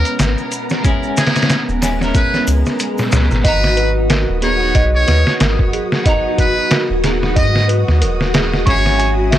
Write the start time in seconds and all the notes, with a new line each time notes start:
Already playing: G#3 B3 C#4 E4 A#4 A#5
0.05 closed hi-hat, maracas
0.19 G#1, snare, closed hi-hat, maracas
0.38 maracas
0.52 closed hi-hat, maracas
0.70 snare, maracas
0.82 G#3 C#4 E4, kick, closed hi-hat, maracas
0.87 G#4
1.03 maracas
1.17 G#4, snare, closed hi-hat, maracas
1.26 snare, closed hi-hat
1.36 snare, closed hi-hat, maracas
1.42 snare, closed hi-hat
1.50 snare, closed hi-hat, maracas
1.69 D#1, maracas
1.81 G#3 C#4 E4 G#4, snare, closed hi-hat, triangle, maracas
1.99 G#3 C#4 E4, snare, maracas
2.04 A#4
2.14 B4, kick, closed hi-hat, swell, maracas
2.34 snare, maracas
2.47 C#2, closed hi-hat, triangle, maracas
2.65 snare, maracas
2.79 closed hi-hat, maracas
2.98 snare, triangle, maracas
3.12 C#2, snare, closed hi-hat, maracas
3.31 G#1, snare, maracas
3.43 G#1 B3 D#4 F#4 B4 D#5 D#6, kick, closed hi-hat
3.48 A#5
3.64 snare
3.77 B4, closed hi-hat
4.10 A#4, snare, closed hi-hat
4.29 D#1
4.42 B3 D#4 F#4 G#4 A#4 C#5, closed hi-hat
4.59 B3 D#4 F#4
4.75 B1 D#5, kick, closed hi-hat
4.95 C#5
5.08 D#2 B4, snare, closed hi-hat
5.27 snare
5.40 G#1 A#4, snare, closed hi-hat
5.59 kick
5.73 G#4, closed hi-hat
5.92 snare
6.04 B3 D#4 F#4 D#5, kick, closed hi-hat
6.09 A#5
6.38 B4, kick, closed hi-hat
6.70 A#4, snare, closed hi-hat
6.90 D#1
7.03 B3 D#4 F#4 G#4 A#4, snare, closed hi-hat
7.21 B3 D#4 F#4, snare
7.36 G#2 D#5, kick, closed hi-hat
7.56 snare
7.68 B4, closed hi-hat
7.88 D#2, snare
8.01 D#1 A#4, closed hi-hat
8.21 snare
8.33 G#4, snare, closed hi-hat
8.54 snare
8.65 G#1 G#3 C#4 E4 C#6, kick, closed hi-hat
8.69 G#4 C#5
8.86 snare
8.99 G#5, closed hi-hat
9.31 E5, snare, closed hi-hat